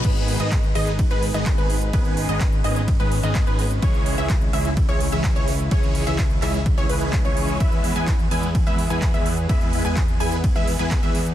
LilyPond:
<<
  \new Staff \with { instrumentName = "Synth pluck" } { \time 4/4 \key gis \minor \tempo 4 = 127 b'8. dis''16 r8 dis''16 r8 b'16 r16 dis''8 b'16 r8 | b'8. dis''16 r8 dis''16 r8 b'16 r16 dis''8 b'16 r8 | cis''8. e''16 r8 e''16 r8 cis''16 r16 e''8 cis''16 r8 | cis''8. e''16 r8 e''16 r8 cis''16 b'8. cis''8. |
e''8. gis''16 r8 gis''16 r8 e''16 r16 gis''8 e''16 r8 | e''8. gis''16 r8 gis''16 r8 e''16 r16 gis''8 e''16 r8 | }
  \new Staff \with { instrumentName = "Analog synth pad" } { \time 4/4 \key gis \minor << { <gis b'>1~ | <gis b'>1 | <cis e'>1~ | <cis e'>1 |
<e gis'>1~ | <e gis'>1 | } \\ { dis'1 | cis'1 | r1 | r1 |
b1~ | b1 | } >> }
  \new Staff \with { instrumentName = "Supersaw synth" } { \time 4/4 \key gis \minor <dis gis b gis' b'>8. <dis gis b gis' dis''>16 r8 <dis gis b gis' dis''>16 r8 <dis gis b gis' b'>16 r16 <dis gis b gis' dis''>8 <dis gis b gis' b'>16 r8 | <dis gis b gis' b'>8. <dis gis b gis' dis''>16 r8 <dis gis b gis' dis''>16 r8 <dis gis b gis' b'>16 r16 <dis gis b gis' dis''>8 <dis gis b gis' b'>16 r8 | <e gis cis' gis' cis''>8. <e gis cis' gis' e''>16 r8 <e gis cis' gis' e''>16 r8 <e gis cis' gis' cis''>16 r16 <e gis cis' gis' e''>8 <e gis cis' gis' cis''>16 r8 | <e gis cis' gis' cis''>8. <e gis cis' gis' e''>16 r8 <e gis cis' gis' e''>16 r8 <e gis cis' gis' cis''>16 <e gis cis' gis' b'>8. <e gis cis' gis' cis''>8. |
<gis b e' b' e''>8. <gis b e' b' gis''>16 r8 <gis b e' b' gis''>16 r8 <gis b e' b' e''>16 r16 <gis b e' b' gis''>8 <gis b e' b' e''>16 r8 | <gis b e' b' e''>8. <gis b e' b' gis''>16 r8 <gis b e' b' gis''>16 r8 <gis b e' b' e''>16 r16 <gis b e' b' gis''>8 <gis b e' b' e''>16 r8 | }
  \new Staff \with { instrumentName = "Analog synth bass" } { \clef bass \time 4/4 \key gis \minor gis,,8. gis,,8. gis,,8. gis,,8 gis,,8 gis,,8. | gis,,8. gis,,8. gis,,8. gis,,8 gis,,8 gis,,8. | cis,8. cis,8. cis,8. cis,8 cis,8 cis,8. | cis,8. cis,8. cis,8. cis,16 cis,8. cis,8. |
e,8. e,8. e,8. e,8 e,8 e,8. | e,8. e,8. e,8. e,8 e,8 e,8. | }
  \new DrumStaff \with { instrumentName = "Drums" } \drummode { \time 4/4 <cymc hh bd cymr>16 hh16 hho16 hh16 <hc hh bd cymr>16 hh16 hho16 hh16 <hh bd cymr>16 hh16 hho16 hh16 <hc hh bd cymr>16 hh16 hho16 hh16 | <hh bd cymr>16 hh16 hho16 hh16 <hc hh bd cymr>16 hh16 hho16 hh16 <hh bd cymr>16 hh16 hho16 hh16 <hc hh bd cymr>16 hh16 hho16 hh16 | <hh bd cymr>16 hh16 hho16 hh16 <hc hh bd cymr>16 hh16 hho16 hh16 <hh bd cymr>16 hh16 hho16 hh16 <hc hh bd cymr>16 hh16 hho16 hh16 | <hh bd cymr>16 hh16 hho16 hh16 <hc hh bd cymr>16 hh16 <hc hho>16 hh16 <hh bd cymr>16 hh16 hho16 hh16 <hc hh bd cymr>16 hh16 hho16 hh16 |
<hh bd cymr>16 hh16 hho16 hh16 <hc hh bd cymr>16 hh16 hho16 hh16 <hh bd cymr>16 hh16 hho16 hh16 <hc hh bd cymr>16 hh16 hho16 hh16 | <hh bd cymr>16 hh16 hho16 hh16 <hc hh bd cymr>16 hh16 hho16 hh16 <hh bd cymr>16 hh16 hho8 <hc hh bd cymr>16 hh16 hho16 hh16 | }
>>